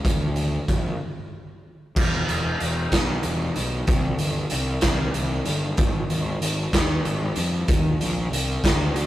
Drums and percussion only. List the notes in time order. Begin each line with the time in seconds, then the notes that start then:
0.05 kick, closed hi-hat
0.36 closed hi-hat
0.68 kick, closed hi-hat
1.96 kick, crash
2.29 closed hi-hat
2.60 closed hi-hat
2.92 kick, snare, closed hi-hat
3.23 closed hi-hat
3.56 closed hi-hat
3.87 kick, closed hi-hat
4.19 closed hi-hat
4.50 closed hi-hat
4.81 kick, snare, closed hi-hat
5.14 closed hi-hat
5.45 closed hi-hat
5.77 kick, closed hi-hat
6.10 closed hi-hat
6.42 closed hi-hat
6.73 kick, snare, closed hi-hat
7.05 closed hi-hat
7.36 closed hi-hat
7.68 kick, closed hi-hat
8.01 closed hi-hat
8.33 closed hi-hat
8.64 kick, snare, closed hi-hat
8.96 closed hi-hat